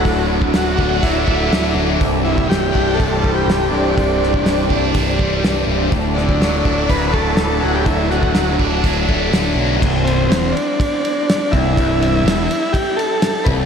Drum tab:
CC |----------------|----------------|----------------|----------------|
RD |----------------|----------------|----------------|----------------|
HH |o---o---o---o---|o---o---o---o---|o---o---o---o---|o---o---o---o---|
SD |----o-------o---|----o-------o---|--o-o-------o---|--o-o-------o---|
BD |o--o--o-o-o-----|o--o--o-o-o-----|o--o--o-o-o-----|o--o--o-o-o-----|

CC |----------------|x---------------|----------------|
RD |----------------|--x-x-x-x-x-x-x-|x-x-x-x-x-x-x-x-|
HH |o---o---o---o---|----------------|----------------|
SD |--o-o-------o---|----o-------o---|----o-------o---|
BD |o--o--o-o-o-----|o-------o-----o-|o-------o-----o-|